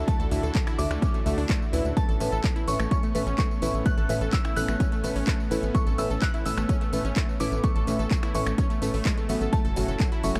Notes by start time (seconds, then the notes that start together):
Already playing: D3 D4 E4 F#4 A4 E5
0.07 A3 A5, kick, closed hi-hat, tambourine
0.20 D2 A4, closed hi-hat, tambourine
0.31 D2 A2 D3 D4 F#4 A4 E5, open hi-hat, tambourine
0.43 D2 A4, closed hi-hat, tambourine
0.55 kick, clap, closed hi-hat, tambourine
0.67 E4, finger snap, closed hi-hat, tambourine
0.78 D2 D3 D4 F#4 A4 E5 D6, open hi-hat, tambourine
0.90 D2 A3, finger snap, closed hi-hat, tambourine
1.02 C#4, kick, closed hi-hat, tambourine
1.14 A3, closed hi-hat, tambourine
1.26 D2 D3 A3 D4 F#4 A4 E5, open hi-hat, tambourine
1.38 D2 D4, open hi-hat, tambourine
1.49 A3, kick, clap, closed hi-hat, tambourine
1.62 tambourine
1.73 D2 A2 C#4 E4 A4 B4 E5, open hi-hat, tambourine
1.85 D2, closed hi-hat, tambourine
1.97 A3 B3 C#4 A5, kick, closed hi-hat, tambourine
2.09 A1 A4, closed hi-hat, tambourine
2.20 A1 A2 C#4 A4 B4 E5, open hi-hat, tambourine
2.32 A1 A4, closed hi-hat, tambourine
2.44 kick, clap, closed hi-hat, tambourine
2.56 E4, closed hi-hat, tambourine
2.68 A1 A2 C#4 A4 B4 E5 C#6, open hi-hat, tambourine
2.79 A1 A3, finger snap, closed hi-hat, tambourine
2.91 C#4 C#6, kick, closed hi-hat, tambourine
3.03 A3, closed hi-hat, tambourine
3.15 A1 A2 A3 C#4 A4 B4 E5, open hi-hat, tambourine
3.27 A1 C#4, tambourine
3.38 A3 C#6, kick, clap, closed hi-hat, tambourine
3.51 tambourine
3.62 A1 A2 C#4 E4 A4 B4 E5, open hi-hat, tambourine
3.74 A1, closed hi-hat, tambourine
3.86 A3 F#6, kick, closed hi-hat, tambourine
3.98 A1 A4, closed hi-hat, tambourine
4.09 A1 A2 C#4 A4 B4 E5, open hi-hat, tambourine
4.21 A1 A4, closed hi-hat, tambourine
4.33 E6, kick, clap, closed hi-hat, tambourine
4.45 E4, finger snap, closed hi-hat, tambourine
4.56 A1 A2 C#4 A4 B4 E5 F#6, open hi-hat, tambourine
4.68 A1 A3, finger snap, tambourine
4.80 C#4, kick, closed hi-hat, tambourine
4.92 A3, closed hi-hat, tambourine
5.04 A1 A2 A3 C#4 A4 B4 E5, open hi-hat, tambourine
5.16 A1 C#4, open hi-hat, tambourine
5.27 A3, kick, clap, closed hi-hat, tambourine
5.40 tambourine
5.51 A1 A2 C#4 E4 A4 B4 E5, open hi-hat, tambourine
5.63 A1, closed hi-hat, tambourine
5.75 A3 C#6, kick, closed hi-hat, tambourine
5.86 A1 A4, closed hi-hat, tambourine
5.98 A1 A2 C#4 A4 B4 E5 E6, open hi-hat, tambourine
6.10 A1 A4, closed hi-hat, tambourine
6.22 F#6, kick, clap, closed hi-hat, tambourine
6.34 E4, closed hi-hat, tambourine
6.46 A1 A2 C#4 A4 B4 E5 E6, open hi-hat, tambourine
6.57 A1 A3, finger snap, closed hi-hat, tambourine
6.69 C#4, kick, closed hi-hat, tambourine
6.81 A3, closed hi-hat, tambourine
6.93 A1 A2 A3 C#4 A4 B4 E5, open hi-hat, tambourine
7.05 A1 C#4, closed hi-hat, tambourine
7.16 A3, kick, clap, closed hi-hat, tambourine
7.29 tambourine
7.40 A1 A2 C#4 E4 A4 B4 E5 D6, open hi-hat, tambourine
7.52 A1, closed hi-hat, tambourine
7.64 A3 C#6, kick, closed hi-hat, tambourine
7.76 A1 A4, closed hi-hat, tambourine
7.87 A1 A2 C#4 A4 B4 E5, open hi-hat, tambourine
7.99 A1 A4, closed hi-hat, tambourine
8.11 kick, clap, closed hi-hat, tambourine
8.23 E4, finger snap, closed hi-hat, tambourine
8.35 A1 A2 C#4 A4 B4 E5 C#6, open hi-hat, tambourine
8.46 A1 A3, finger snap, tambourine
8.58 C#4, kick, closed hi-hat, tambourine
8.70 A3, closed hi-hat, tambourine
8.82 A1 A2 A3 C#4 A4 B4 E5, open hi-hat, tambourine
8.94 A1 A3, open hi-hat, tambourine
9.05 G#3, kick, clap, closed hi-hat, tambourine
9.17 A3, closed hi-hat, tambourine
9.29 A1 F#3 B3 C#4 F#4 A4 E5, open hi-hat, tambourine
9.41 A1 A4, tambourine
9.53 F#3 A3 C#4 E4 F#4 A4 A5, kick, closed hi-hat, tambourine
9.65 F#1 A4, closed hi-hat, tambourine
9.76 F#1 A2 F#3 C#4 F#4 A4 E5, open hi-hat, tambourine
9.88 F#1 A4, closed hi-hat, tambourine
10.00 kick, clap, closed hi-hat, tambourine
10.12 E4, closed hi-hat, tambourine
10.24 F#1 F#3 C#4 F#4 A4 E5 C#6, open hi-hat, tambourine
10.35 F#1 A3, finger snap, closed hi-hat, tambourine